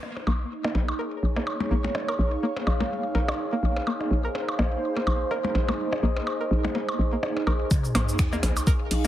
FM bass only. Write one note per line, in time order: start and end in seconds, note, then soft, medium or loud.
0.27 0.44 A#1 medium
0.75 0.92 A#1 medium
1.23 1.40 A#1 medium
1.71 1.88 A#1 medium
2.19 2.36 A#1 loud
2.67 2.84 A#1 loud
3.15 3.32 A#1 medium
3.63 3.80 A#1 medium
4.11 4.28 A#1 medium
4.59 4.76 A#1 loud
5.07 5.24 A#1 medium
5.55 5.72 A#1 medium
6.03 6.20 A#1 loud
6.51 6.68 A#1 loud
6.99 7.16 A#1 loud
7.47 7.64 A#1 medium
7.95 8.12 A#1 loud
8.43 8.60 A#1 loud
8.91 9.07 A#1 medium